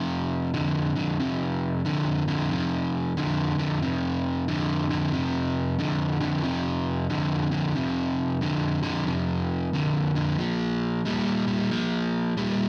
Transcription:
Already playing: F2 C3
0.54 F2 D3
0.96 F2 D3
1.20 F2 C3
1.85 F2 D3
2.28 F2 D3
2.51 F2 C3
3.17 F2 D3
3.59 F2 D3
3.82 F2 C3
4.48 F2 D3
4.89 F2 D3
5.13 F2 C3
5.79 F2 D3
6.21 F2 D3
6.43 F2 C3
7.10 F2 D3
7.51 F2 D3
7.75 F2 C3
8.41 F2 D3
8.83 F2 D3
9.06 F2 C3
9.73 F2 D3
10.15 F2 D3
10.38 A#2 F3
11.05 A#2 G3
11.47 A#2 G3
11.71 A#2 F3
12.37 A#2 G3

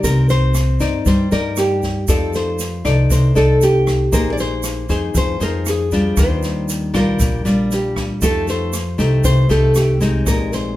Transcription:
Already playing: D#4 A#4 D5
0.03 C2 C4 A#4, kick, snare, shaker
0.29 C5, snare, shaker
0.54 cross-stick, snare, shaker
0.80 G2 D#4 A#4 D5, kick, snare, shaker
1.06 G2 G3 C5, kick, snare, shaker
1.31 G2 D#4 A#4 D5, snare, shaker
1.56 G4, cross-stick, snare, shaker
1.82 kick, snare, shaker
2.08 F2 F3 D#4 A4 D5, kick, cross-stick, snare, shaker
2.33 C5, snare, shaker
2.59 snare, shaker
2.85 C2 D#4 A4 D5, kick, cross-stick, snare, shaker
3.10 C2 C3 C5, kick, snare, shaker
3.35 C2 D#4 A4 D5, snare, shaker
3.61 G4, snare, shaker
3.87 kick, cross-stick, snare, shaker
4.12 A#1 A#3 D#4 G#4 A#4 C5, kick, snare, shaker
4.33 D5
4.38 C5, snare, shaker
4.63 cross-stick, snare, shaker
4.89 F2 D#4 G#4 C5, kick, snare, shaker
5.14 F2 F3 C5, kick, snare, shaker
5.40 F2 D#4 G#4 A#4 C5, snare, shaker
5.66 G#4, cross-stick, snare, shaker
5.91 G3 D4 F4, kick, snare, shaker
6.17 D#2 D#3 C5, kick, cross-stick, snare, shaker
6.43 snare, shaker
6.68 snare, shaker
6.94 A#1 G3 D4 F4 A#4, kick, cross-stick, snare, shaker
7.19 A#1 A#2, kick, snare, shaker
7.45 A#1 G3 D4 F4, snare, shaker
7.71 G4, snare, shaker
7.96 kick, cross-stick, snare, shaker
8.22 F2 F3 A3 D#4 G4 A4, kick, snare, shaker
8.48 C5, snare, shaker
8.73 cross-stick, snare, shaker
8.98 C2 A3 D#4 G4, kick, snare, shaker
9.24 C2 C3 C5, kick, snare, shaker
9.49 C2 A3 D#4 G4 A4, snare, shaker
9.75 G4, cross-stick, snare, shaker
10.01 G#3 C4 D#4, kick, snare, shaker
10.26 A#1 A#2 A#4, kick, cross-stick, snare, shaker
10.52 C5, snare, shaker

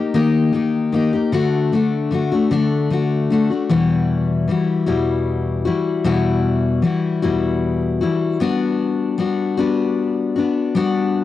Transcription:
Already playing: A#3 D#4 G4
0.14 D#3 A#3 D#4 G4
0.52 D#3 A#3 D#4 G4
0.92 D#3 A#3 D#4 G4
1.13 A#3 D#4 G4
1.32 D3 A3 D4 F#4
1.72 D3 A3 D4 F#4
2.11 D3 A3 D4 F#4
2.32 A3 D4 F#4
2.51 D3 A3 D4 F#4
2.90 D3 A3 D4 F#4
3.30 D3 A3 D4 F#4
3.50 A3 D4 F#4
3.70 E2 B2 E3 G3 E4 F#4
4.48 E3 G3 E4 F#4
4.86 E2 B2 E3 G3 E4 F#4
5.65 E3 G3 E4 F#4
6.04 E2 B2 E3 G3 E4 F#4
6.82 E3 G3 E4 F#4
7.22 E2 B2 E3 G3 E4 F#4
8.01 E3 G3 E4 F#4
8.40 G3 B3 D4 F#4
9.18 G3 B3 D4 F#4
9.57 G3 B3 D4 F#4
10.36 B3 D4 F#4
10.75 G3 B3 D4 F#4

